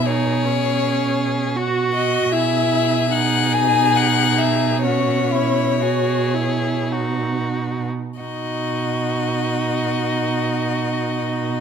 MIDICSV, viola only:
0, 0, Header, 1, 2, 480
1, 0, Start_track
1, 0, Key_signature, 5, "major"
1, 0, Tempo, 751880
1, 38, Time_signature, 3, 2, 24, 8
1, 1478, Tempo, 800000
1, 1958, Tempo, 864553
1, 2918, Tempo, 970874
1, 3398, Tempo, 1111111
1, 3878, Tempo, 1284797
1, 4358, Tempo, 1151631
1, 5772, End_track
2, 0, Start_track
2, 0, Title_t, "Viola"
2, 0, Program_c, 0, 41
2, 44, Note_on_c, 0, 63, 42
2, 286, Note_on_c, 0, 61, 43
2, 296, Note_off_c, 0, 63, 0
2, 996, Note_on_c, 0, 66, 53
2, 1005, Note_off_c, 0, 61, 0
2, 1236, Note_off_c, 0, 66, 0
2, 1240, Note_on_c, 0, 66, 50
2, 1482, Note_on_c, 0, 64, 46
2, 1491, Note_off_c, 0, 66, 0
2, 1958, Note_off_c, 0, 64, 0
2, 1961, Note_on_c, 0, 63, 50
2, 2914, Note_on_c, 0, 61, 39
2, 2922, Note_off_c, 0, 63, 0
2, 3390, Note_off_c, 0, 61, 0
2, 3393, Note_on_c, 0, 66, 38
2, 3625, Note_on_c, 0, 64, 35
2, 3631, Note_off_c, 0, 66, 0
2, 3872, Note_on_c, 0, 63, 32
2, 3878, Note_off_c, 0, 64, 0
2, 4237, Note_off_c, 0, 63, 0
2, 4354, Note_on_c, 0, 63, 32
2, 5772, Note_off_c, 0, 63, 0
2, 5772, End_track
0, 0, End_of_file